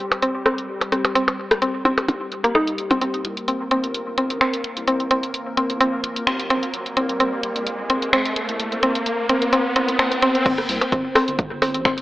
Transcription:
0.00 3.03 G3 medium
0.00 3.03 G4 medium
0.12 closed hi-hat soft
0.12 percussion blips medium
0.22 0.31 C4 medium
0.22 closed hi-hat soft
0.46 0.52 C4 loud
0.46 cross-stick medium
0.46 closed hi-hat soft
0.58 closed hi-hat soft
0.81 closed hi-hat soft
0.81 percussion blips medium
0.92 1.01 C4 medium
0.92 cross-stick soft
0.92 closed hi-hat soft
1.05 closed hi-hat soft
1.05 percussion blips medium
1.15 1.21 C4 loud
1.15 closed hi-hat soft
1.28 closed hi-hat soft
1.28 percussion blips medium
1.51 cross-stick medium
1.51 closed hi-hat soft
1.62 1.71 C4 medium
1.62 closed hi-hat soft
1.85 1.91 C4 loud
1.85 closed hi-hat soft
1.85 percussion blips medium
1.98 cross-stick soft
1.98 closed hi-hat soft
1.98 percussion blips medium
2.08 closed hi-hat soft
2.08 percussion blips medium
2.32 closed hi-hat soft
2.44 2.47 A#3 loud
2.44 closed hi-hat soft
2.55 2.61 D#4 loud
2.55 cross-stick medium
2.67 closed hi-hat soft
2.78 closed hi-hat soft
2.91 2.96 C4 medium
2.91 closed hi-hat soft
2.91 percussion blips medium
3.01 10.47 A#3 medium
3.01 3.07 C4 loud
3.01 10.47 A#4 medium
3.01 closed hi-hat medium
3.01 riser medium
3.14 closed hi-hat soft
3.25 3.35 C2 loud
3.25 closed hi-hat medium
3.37 closed hi-hat soft
3.48 3.57 C4 medium
3.48 closed hi-hat medium
3.71 3.77 C4 loud
3.71 closed hi-hat medium
3.84 4.02 G1 loud
3.84 closed hi-hat soft
3.94 closed hi-hat medium
4.07 4.32 G1 medium
4.18 4.27 C4 medium
4.18 closed hi-hat loud
4.30 4.39 A#1 medium
4.30 closed hi-hat soft
4.41 4.47 C4 loud
4.41 finger snap loud
4.53 closed hi-hat medium
4.64 closed hi-hat medium
4.77 5.08 C2 medium
4.77 closed hi-hat soft
4.87 4.96 C4 medium
4.87 closed hi-hat medium
5.00 closed hi-hat soft
5.11 5.21 C2 loud
5.11 5.17 C4 loud
5.11 closed hi-hat medium
5.23 closed hi-hat soft
5.34 closed hi-hat medium
5.57 5.66 C4 medium
5.57 closed hi-hat medium
5.70 5.88 G1 loud
5.70 closed hi-hat soft
5.81 5.86 C4 loud
5.81 closed hi-hat medium
6.04 closed hi-hat loud
6.16 closed hi-hat soft
6.27 6.52 D#2 medium
6.27 6.36 C4 medium
6.27 finger snap loud
6.40 closed hi-hat medium
6.50 6.60 G1 loud
6.50 6.56 C4 loud
6.50 closed hi-hat loud
6.63 closed hi-hat soft
6.74 closed hi-hat medium
6.86 closed hi-hat soft
6.97 7.07 C2 loud
6.97 7.06 C4 medium
6.97 closed hi-hat loud
7.09 closed hi-hat soft
7.20 7.26 C4 loud
7.20 closed hi-hat medium
7.43 closed hi-hat medium
7.56 7.74 G1 loud
7.56 closed hi-hat soft
7.67 closed hi-hat medium
7.79 8.04 G1 medium
7.90 7.99 C4 medium
7.90 closed hi-hat loud
8.02 8.11 A#1 medium
8.02 closed hi-hat soft
8.13 8.19 C4 medium
8.13 finger snap loud
8.25 closed hi-hat medium
8.36 closed hi-hat loud
8.49 8.80 C2 medium
8.49 closed hi-hat soft
8.60 closed hi-hat medium
8.72 closed hi-hat soft
8.83 8.93 C2 loud
8.83 8.92 C4 medium
8.83 closed hi-hat loud
8.95 closed hi-hat soft
9.06 closed hi-hat medium
9.29 9.38 C4 medium
9.29 closed hi-hat medium
9.42 9.60 G1 loud
9.42 closed hi-hat soft
9.53 9.62 C4 medium
9.53 closed hi-hat medium
9.76 10.19 C2 loud
9.76 9.85 C4 medium
9.76 closed hi-hat loud
9.88 closed hi-hat soft
9.99 10.08 C4 medium
9.99 finger snap loud
10.12 closed hi-hat soft
10.22 10.33 D#2 loud
10.22 10.31 C4 medium
10.22 closed hi-hat loud
10.35 closed hi-hat soft
10.46 12.02 C4 medium
10.46 10.52 C4 loud
10.46 12.02 C5 medium
10.46 kick loud
10.46 closed hi-hat medium
10.46 crash loud
10.58 cross-stick soft
10.58 closed hi-hat soft
10.69 10.79 C2 loud
10.69 open hi-hat medium
10.81 closed hi-hat soft
10.81 percussion blips soft
10.92 11.01 C4 medium
10.92 kick loud
10.92 closed hi-hat medium
11.15 11.21 C4 loud
11.15 cross-stick medium
11.15 open hi-hat medium
11.28 11.46 G1 loud
11.28 closed hi-hat soft
11.39 kick loud
11.39 closed hi-hat medium
11.51 11.76 G1 medium
11.62 11.71 C4 medium
11.62 cross-stick soft
11.62 open hi-hat medium
11.62 percussion blips soft
11.74 11.83 A#1 medium
11.74 closed hi-hat soft
11.85 11.91 C4 loud
11.85 finger snap loud
11.85 kick loud
11.98 closed hi-hat medium

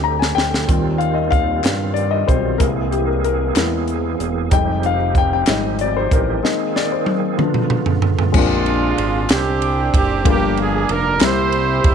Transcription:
0.00 0.33 D2 medium
0.00 0.67 D3 medium
0.00 0.67 G3 soft
0.00 0.70 G#3 soft
0.00 0.68 C4 soft
0.00 4.48 C4 medium
0.00 0.71 D4 soft
0.00 0.65 G4 medium
0.00 0.71 A#4 medium
0.00 0.70 C5 medium
0.00 0.71 A#5 medium
0.19 0.35 G#5 medium
0.19 snare medium
0.35 0.66 D2 medium
0.35 1.02 G5 loud
0.35 snare medium
0.54 snare medium
0.67 1.60 D#2 loud
0.67 2.58 D#3 medium
0.67 2.27 G3 soft
0.67 2.58 G3 medium
0.67 2.28 C4 soft
0.67 2.58 F4 medium
0.67 2.28 F4 medium
0.67 kick loud
0.67 closed hi-hat medium
0.98 1.14 F5 medium
0.98 closed hi-hat soft
1.14 1.19 D#5 medium
1.31 1.97 F5 loud
1.31 kick medium
1.31 closed hi-hat soft
1.64 2.24 G2 medium
1.64 snare loud
1.64 clap medium
1.64 closed hi-hat medium
1.94 2.12 D5 medium
1.94 closed hi-hat soft
2.11 2.28 D#5 medium
2.28 2.58 B1 medium
2.28 2.57 G3 soft
2.28 2.58 C4 soft
2.28 2.58 F4 soft
2.28 2.61 C5 medium
2.28 kick medium
2.28 closed hi-hat medium
2.58 3.52 C2 loud
2.58 4.50 E3 medium
2.58 3.52 G#3 soft
2.58 3.52 A#3 soft
2.58 4.50 A#3 medium
2.58 3.52 E4 medium
2.58 4.50 G#4 medium
2.58 2.66 A#4 medium
2.58 kick loud
2.58 closed hi-hat loud
2.91 3.08 G4 medium
2.91 closed hi-hat soft
3.07 3.22 A#4 medium
3.24 3.55 A#4 medium
3.24 closed hi-hat soft
3.56 4.16 E2 loud
3.56 3.85 G#3 soft
3.56 3.85 A#3 soft
3.56 3.86 E4 soft
3.56 3.86 A#4 medium
3.56 snare medium
3.56 clap medium
3.56 closed hi-hat medium
3.88 closed hi-hat soft
4.20 4.49 E1 medium
4.20 closed hi-hat medium
4.50 5.43 F1 loud
4.50 6.40 F3 medium
4.50 4.94 G3 medium
4.50 4.95 G#3 soft
4.50 6.41 C4 medium
4.50 6.41 D#4 medium
4.50 4.95 D#4 medium
4.50 6.41 G4 medium
4.50 4.85 G5 medium
4.50 kick loud
4.50 closed hi-hat medium
4.83 5.15 F5 medium
4.83 closed hi-hat soft
5.15 5.32 G5 medium
5.15 kick medium
5.15 closed hi-hat soft
5.33 5.49 G5 medium
5.46 6.08 G#1 medium
5.46 5.77 G3 soft
5.46 5.77 G#3 soft
5.46 5.77 D#4 soft
5.46 5.81 D#5 medium
5.46 snare loud
5.46 clap medium
5.46 closed hi-hat medium
5.79 5.97 D5 medium
5.79 closed hi-hat medium
5.97 6.12 C5 medium
6.11 6.41 A1 medium
6.11 6.72 A#4 medium
6.11 kick loud
6.11 closed hi-hat medium
6.43 7.38 D#3 medium
6.43 7.35 G#3 medium
6.43 7.38 A#3 medium
6.43 7.38 C4 medium
6.43 7.35 C4 soft
6.43 7.35 D#4 medium
6.43 7.38 G#4 medium
6.43 snare medium
6.76 6.92 D5 medium
6.76 snare medium
6.92 7.21 C5 medium
7.06 high tom medium
7.38 8.33 C#3 medium
7.38 8.33 D3 medium
7.38 7.81 F3 medium
7.38 8.33 B3 medium
7.38 7.81 B3 medium
7.38 7.81 D4 medium
7.38 8.33 F4 medium
7.38 mid tom medium
7.54 mid tom medium
7.70 mid tom medium
7.86 floor tom medium
8.02 floor tom loud
8.19 floor tom medium
8.32 8.94 A#1 loud
8.32 9.26 A#2 medium
8.32 10.21 G#3 medium
8.32 10.21 C4 medium
8.32 10.22 D4 medium
8.32 kick loud
8.32 crash loud
8.36 9.27 G#3 medium
8.36 9.27 D4 medium
8.36 9.27 F4 medium
8.36 10.23 G4 medium
8.36 10.23 A#4 medium
8.66 ride soft
8.98 9.27 G#1 loud
8.98 ride medium
9.29 9.90 C2 medium
9.29 10.23 C4 medium
9.29 10.23 D4 medium
9.29 9.91 G4 medium
9.29 snare loud
9.29 clap medium
9.29 ride medium
9.62 ride soft
9.94 10.23 F#1 medium
9.94 10.25 G4 medium
9.94 kick loud
9.94 ride medium
10.24 10.85 G1 loud
10.24 11.17 G2 medium
10.24 11.20 F3 medium
10.24 11.20 A#3 medium
10.24 11.21 D4 medium
10.24 11.21 F4 medium
10.24 10.32 G#4 medium
10.24 kick loud
10.24 ride medium
10.28 11.18 A#3 medium
10.28 11.18 D4 medium
10.28 10.57 G4 medium
10.33 11.22 A#4 medium
10.57 10.91 G#4 medium
10.57 ride soft
10.89 11.18 F1 loud
10.89 11.22 A#4 medium
10.89 ride medium
11.20 11.80 C2 loud
11.20 11.95 C3 medium
11.20 11.95 G3 medium
11.20 11.95 A#3 medium
11.20 11.95 C4 medium
11.20 11.95 E4 medium
11.20 11.95 G4 medium
11.20 11.95 A#4 medium
11.20 snare loud
11.20 clap medium
11.20 ride medium
11.25 11.94 C5 loud
11.52 ride soft
11.84 11.95 E1 loud
11.84 kick loud
11.84 ride medium

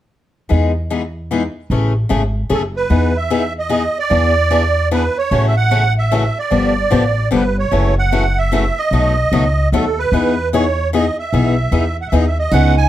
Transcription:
0.49 1.47 E2 medium
0.49 0.70 E3 soft
0.49 0.71 G#3 medium
0.49 0.71 B3 soft
0.49 0.71 D#4 medium
0.49 0.71 G#4 medium
0.90 1.01 E3 medium
0.90 1.01 G#3 medium
0.90 1.02 B3 medium
0.90 1.02 D#4 medium
0.90 1.02 G#4 medium
1.31 1.42 E3 medium
1.31 1.42 G#3 medium
1.31 1.42 B3 medium
1.31 1.42 D#4 medium
1.31 1.42 G#4 medium
1.70 2.02 A1 medium
1.70 1.92 C#3 medium
1.70 1.92 E3 medium
1.70 1.92 A3 medium
1.70 1.92 C#4 medium
1.70 1.92 G#4 medium
2.09 2.44 G#1 medium
2.09 2.21 C#3 medium
2.09 2.21 E3 medium
2.09 2.21 A3 medium
2.09 2.21 C#4 medium
2.09 2.21 G#4 medium
2.50 2.84 F#1 medium
2.50 2.61 C#3 medium
2.50 2.61 E3 medium
2.50 2.61 A3 medium
2.50 2.61 C#4 medium
2.50 2.61 G#4 medium
2.50 2.63 A4 medium
2.76 3.17 B4 medium
2.90 3.86 E2 medium
2.90 3.11 E3 medium
2.90 3.11 B3 medium
2.90 3.11 D#4 medium
2.90 3.11 G#4 medium
3.17 3.53 E5 medium
3.30 3.42 E3 medium
3.30 3.42 B3 medium
3.30 3.42 D#4 medium
3.30 3.42 G#4 medium
3.59 3.98 D#5 medium
3.69 3.81 E3 medium
3.69 3.81 B3 medium
3.69 3.82 D#4 medium
3.69 3.82 G#4 medium
3.99 4.89 D5 medium
4.10 5.07 E2 medium
4.10 4.31 E3 medium
4.10 4.32 B3 medium
4.10 4.32 D4 medium
4.10 4.32 G#4 medium
4.51 4.62 E3 medium
4.51 4.62 B3 medium
4.51 4.62 D4 medium
4.51 4.62 G#4 medium
4.91 5.02 E3 medium
4.91 5.02 B3 medium
4.91 5.02 D4 medium
4.91 5.02 G#4 medium
4.91 5.17 B4 medium
5.18 5.46 C#5 medium
5.31 6.27 A1 medium
5.31 5.52 C#3 medium
5.31 5.52 E3 soft
5.31 5.52 A3 medium
5.31 5.53 C#4 medium
5.31 5.53 F#4 medium
5.47 5.56 E5 medium
5.57 5.94 F#5 loud
5.71 5.82 C#3 medium
5.71 5.82 E3 medium
5.71 5.82 A3 medium
5.71 5.82 C#4 medium
5.71 5.83 F#4 medium
5.99 6.38 E5 medium
6.11 6.23 C#3 medium
6.11 6.23 E3 medium
6.11 6.22 A3 medium
6.11 6.23 C#4 medium
6.11 6.23 F#4 medium
6.39 7.29 D5 medium
6.51 6.83 G1 medium
6.51 6.72 D3 medium
6.51 6.72 F3 medium
6.51 6.72 B3 medium
6.51 6.73 D4 medium
6.51 6.73 G4 medium
6.90 7.26 A1 medium
6.90 7.02 D3 medium
6.90 7.02 F3 medium
6.90 7.02 B3 medium
6.90 7.03 D4 medium
6.90 7.03 G4 medium
7.31 7.66 G1 medium
7.31 7.42 D3 medium
7.31 7.43 F3 medium
7.31 7.43 B3 medium
7.31 7.43 D4 medium
7.31 7.42 G4 medium
7.36 7.57 B4 medium
7.59 7.95 C#5 medium
7.71 8.68 F#1 medium
7.71 7.92 C#3 medium
7.71 7.93 E3 medium
7.71 7.93 A3 medium
7.71 7.93 C#4 medium
7.71 7.93 F#4 medium
7.99 8.39 F#5 medium
8.12 8.23 C#3 medium
8.12 8.23 E3 medium
8.12 8.23 A3 medium
8.12 8.23 C#4 medium
8.12 8.23 F#4 medium
8.38 8.79 E5 medium
8.52 8.63 C#3 medium
8.52 8.63 E3 medium
8.52 8.63 A3 medium
8.52 8.63 C#4 medium
8.52 8.63 F#4 medium
8.78 9.69 D#5 medium
8.91 9.23 B1 medium
8.91 9.13 B2 medium
8.91 9.13 F#3 medium
8.91 9.13 A3 medium
8.91 9.14 D#4 medium
8.91 9.14 F#4 medium
9.32 9.66 C#2 medium
9.32 9.43 B2 medium
9.32 9.43 F#3 medium
9.32 9.43 A3 medium
9.32 9.44 D#4 medium
9.32 9.43 F#4 medium
9.72 10.06 D#2 medium
9.72 9.84 B2 medium
9.72 9.84 F#3 medium
9.72 9.84 A3 medium
9.72 9.84 D#4 medium
9.72 9.84 F#4 medium
9.72 9.99 A4 medium
9.99 10.49 B4 medium
10.12 11.08 E2 medium
10.12 10.34 E3 medium
10.12 10.34 B3 medium
10.12 10.34 D#4 medium
10.12 10.34 G#4 medium
10.53 10.64 E3 medium
10.53 10.64 B3 medium
10.53 10.64 D#4 medium
10.53 10.64 G#4 medium
10.53 10.90 C#5 medium
10.93 11.04 E3 medium
10.93 11.04 B3 medium
10.93 11.04 D#4 medium
10.93 11.04 G#4 medium
10.93 11.17 D#5 medium
11.19 11.97 E5 medium
11.33 11.64 B1 medium
11.33 11.54 E3 medium
11.33 11.54 B3 medium
11.33 11.54 D#4 medium
11.33 11.54 G#4 medium
11.72 12.06 E2 medium
11.72 11.83 E3 medium
11.72 11.83 B3 medium
11.72 11.83 D#4 medium
11.72 11.84 G#4 medium
12.01 12.07 F#5 medium
12.08 12.46 D#2 medium
12.08 12.23 E3 medium
12.08 12.15 E5 medium
12.13 12.24 B3 medium
12.13 12.24 D#4 medium
12.13 12.24 G#4 medium
12.13 12.26 D#5 medium
12.27 12.38 E5 medium
12.39 12.52 D#5 medium
12.52 12.89 C#2 medium
12.52 12.74 C#3 medium
12.52 12.74 E3 medium
12.52 12.74 B3 medium
12.52 12.74 C#4 medium
12.52 12.89 D#4 medium
12.52 12.74 G#4 medium
12.52 12.75 F#5 loud
12.77 12.89 G#5 loud

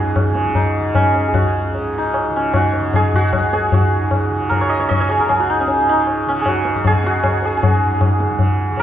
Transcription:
0.00 1.30 C#2 medium
0.00 1.78 G#2 medium
0.00 0.29 C#3 medium
0.00 0.95 C#4 medium
0.00 0.55 D#4 medium
0.00 1.34 F#4 medium
0.00 1.28 G#4 medium
0.00 0.25 A#4 loud
0.16 tabla na medium
0.16 tabla ge medium
0.29 0.79 C#3 medium
0.35 tabla te medium
0.45 tabla ge medium
0.55 1.98 D#4 medium
0.55 tabla tin medium
0.55 tabla ge medium
0.79 2.29 C#3 medium
0.95 2.36 C#4 loud
0.95 tabla tin medium
0.95 tabla ge medium
1.14 tabla na medium
1.28 3.31 C#2 medium
1.28 2.95 G#4 medium
1.34 2.55 F#4 medium
1.34 tabla na medium
1.34 tabla ge medium
1.74 3.81 G#2 medium
1.74 tabla tin medium
1.98 5.49 D#4 medium
2.14 tabla na medium
2.29 2.80 C#3 medium
2.36 5.60 C#4 medium
2.54 3.15 F#4 medium
2.54 tabla na medium
2.54 tabla ge medium
2.73 tabla te medium
2.80 4.30 C#3 medium
2.93 3.53 G#4 loud
2.93 tabla na medium
2.93 tabla ge medium
3.14 3.74 F#4 loud
3.14 tabla ge medium
3.31 5.28 C#2 medium
3.31 tabla na medium
3.31 tabla ge medium
3.53 5.09 G#4 medium
3.53 tabla te medium
3.72 5.39 F#4 medium
3.72 tabla tin loud
3.72 tabla ge medium
3.81 5.79 G#2 medium
4.11 tabla na medium
4.11 tabla ge medium
4.30 4.79 C#3 medium
4.49 5.20 A#4 loud
4.49 tabla tin medium
4.49 tabla ge medium
4.61 4.79 C#5 loud
4.69 4.88 D#5 loud
4.79 6.26 C#3 medium
4.79 5.00 C#5 medium
4.89 7.26 D#5 loud
4.89 tabla tin medium
4.89 tabla ge medium
5.00 7.55 C#5 loud
5.09 5.29 G#4 medium
5.09 tabla na medium
5.19 8.05 A#4 medium
5.19 tabla ke medium
5.28 7.26 C#2 medium
5.28 6.41 G#4 loud
5.28 tabla na medium
5.28 tabla ge medium
5.40 6.48 F#4 medium
5.50 5.89 D#4 medium
5.60 6.28 C#4 medium
5.68 tabla tin medium
5.79 7.73 G#2 medium
5.89 8.83 D#4 loud
6.07 tabla na medium
6.26 6.75 C#3 medium
6.26 8.83 C#4 loud
6.41 6.87 G#4 medium
6.46 7.06 F#4 medium
6.46 tabla na medium
6.46 tabla ge medium
6.65 tabla te medium
6.75 8.21 C#3 medium
6.75 tabla ge medium
6.85 7.45 G#4 loud
6.85 tabla na medium
6.85 tabla ge medium
7.04 7.63 F#4 loud
7.04 tabla te medium
7.24 8.83 C#2 medium
7.24 tabla na loud
7.24 tabla ge medium
7.42 7.57 G#4 loud
7.42 tabla te medium
7.57 8.83 G#4 medium
7.63 8.83 F#4 medium
7.63 tabla tin medium
7.63 tabla ge medium
7.73 8.83 G#2 medium
8.01 tabla na medium
8.01 tabla ge medium
8.20 8.70 C#3 medium
8.20 tabla te medium
8.30 tabla ge medium
8.39 tabla tin medium
8.39 tabla ge medium
8.70 8.83 C#3 medium
8.77 8.83 A#4 loud
8.77 tabla tin medium
8.77 tabla ge medium

